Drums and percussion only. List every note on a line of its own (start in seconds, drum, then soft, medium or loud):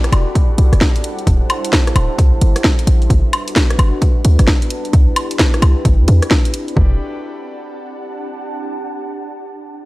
0.04 cross-stick medium
0.04 closed hi-hat medium
0.13 closed hi-hat loud
0.13 high woodblock medium
0.35 kick loud
0.35 closed hi-hat medium
0.58 closed hi-hat loud
0.73 cross-stick medium
0.73 closed hi-hat medium
0.81 kick loud
0.81 snare loud
0.96 closed hi-hat medium
1.04 closed hi-hat loud
1.19 closed hi-hat soft
1.27 kick loud
1.27 closed hi-hat medium
1.50 closed hi-hat loud
1.50 high woodblock medium
1.65 closed hi-hat medium
1.73 kick loud
1.73 snare loud
1.87 cross-stick medium
1.87 closed hi-hat soft
1.96 closed hi-hat loud
1.96 high woodblock medium
2.18 kick loud
2.18 closed hi-hat medium
2.41 closed hi-hat loud
2.56 cross-stick medium
2.56 closed hi-hat medium
2.64 kick loud
2.64 snare loud
2.79 closed hi-hat medium
2.87 closed hi-hat loud
3.02 closed hi-hat soft
3.10 kick loud
3.10 closed hi-hat medium
3.33 closed hi-hat loud
3.33 high woodblock medium
3.48 closed hi-hat medium
3.56 kick loud
3.56 snare loud
3.70 cross-stick medium
3.70 closed hi-hat medium
3.79 closed hi-hat loud
3.79 high woodblock medium
4.02 kick loud
4.02 closed hi-hat medium
4.25 closed hi-hat loud
4.39 cross-stick medium
4.39 closed hi-hat medium
4.48 kick loud
4.48 snare loud
4.62 closed hi-hat medium
4.70 closed hi-hat loud
4.85 closed hi-hat soft
4.93 kick loud
4.93 closed hi-hat medium
5.16 closed hi-hat loud
5.16 high woodblock medium
5.31 closed hi-hat medium
5.39 kick loud
5.39 snare loud
5.54 cross-stick medium
5.54 closed hi-hat soft
5.62 closed hi-hat loud
5.62 high woodblock medium
5.85 kick loud
5.85 closed hi-hat medium
6.08 closed hi-hat loud
6.22 cross-stick medium
6.22 closed hi-hat medium
6.31 kick loud
6.31 snare loud
6.45 closed hi-hat medium
6.54 closed hi-hat loud
6.68 closed hi-hat soft
6.77 kick loud